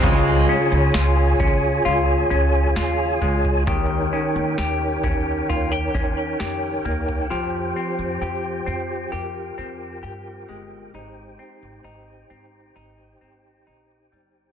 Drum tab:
SD |----o-------o---|----o-------o---|----------------|----------------|
FT |o-----o-o-----oo|o-----o-o-----oo|----------------|----------------|
BD |o-----o---------|o-----o---o-----|----------------|----------------|